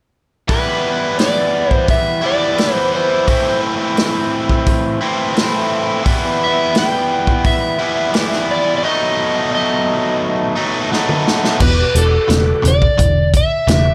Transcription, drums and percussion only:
0.49 kick, open hi-hat
1.19 snare, open hi-hat
1.71 kick
1.88 kick, open hi-hat
2.58 snare, open hi-hat
3.28 kick, open hi-hat
3.97 snare, open hi-hat
4.49 kick
4.66 kick, open hi-hat
5.36 snare, open hi-hat
6.06 kick, open hi-hat
6.75 snare, open hi-hat
7.27 kick
7.44 kick, open hi-hat
8.14 snare, open hi-hat
8.33 snare
10.93 snare
11.09 mid tom
11.28 snare
11.44 snare
11.60 kick, crash
11.95 closed hi-hat
12.30 snare, closed hi-hat
12.65 closed hi-hat
12.82 kick
12.99 kick, closed hi-hat
13.34 kick, closed hi-hat
13.68 snare, closed hi-hat

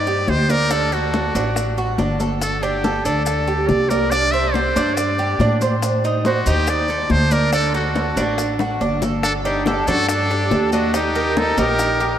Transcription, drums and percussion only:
0.06 high bongo, high conga, maracas
0.27 high bongo, low bongo, high conga, maracas
0.49 high bongo, high conga, maracas
0.70 high bongo, high conga, maracas
0.92 high conga, maracas
1.14 high bongo, high conga, maracas
1.35 high bongo, high conga, maracas
1.56 high bongo, high conga, maracas
1.77 high bongo, high conga, maracas
1.98 high bongo, low bongo, high conga, maracas
2.20 high bongo, high conga, maracas
2.41 high bongo, high conga, maracas
2.63 high conga, maracas
2.84 high bongo, high conga, maracas
3.05 high bongo, high conga, maracas
3.26 high bongo, high conga, maracas
3.48 high bongo, high conga, maracas
3.69 high bongo, low bongo, high conga, maracas
3.90 high bongo, high conga, maracas
4.12 high bongo, high conga, maracas
4.33 high conga, maracas
4.54 high bongo, high conga, maracas
4.76 high bongo, high conga, maracas
4.97 high bongo, high conga, maracas
5.18 high bongo, high conga, maracas
5.40 high bongo, low bongo, high conga, maracas
5.61 high bongo, high conga, maracas
5.82 high bongo, high conga, maracas
6.04 high conga, maracas
6.25 high bongo, high conga, maracas
6.46 high bongo, high conga, maracas
6.67 high bongo, high conga, maracas
6.88 high bongo, high conga, maracas
7.09 high bongo, low bongo, high conga, maracas
7.31 high bongo, high conga, maracas
7.53 high bongo, high conga, maracas
7.74 high conga, maracas
7.95 high bongo, high conga, maracas
8.17 high bongo, high conga, maracas
8.38 high bongo, high conga, maracas
8.59 high bongo, high conga, maracas
8.81 high conga, maracas
9.02 low bongo, high conga, maracas
9.23 high bongo, high conga, maracas
9.45 high conga, maracas
9.66 high bongo, high conga, maracas
9.87 high bongo, high conga, low conga, maracas
10.09 high bongo, high conga, maracas
10.30 high bongo, high conga, maracas
10.51 high bongo, low bongo, high conga, maracas
10.72 high bongo, high conga, maracas
10.94 high bongo, maracas
11.15 high conga, maracas
11.36 high bongo, high conga, maracas
11.58 high bongo, high conga, maracas
11.79 high bongo, high conga, maracas
12.00 high bongo, high conga, maracas

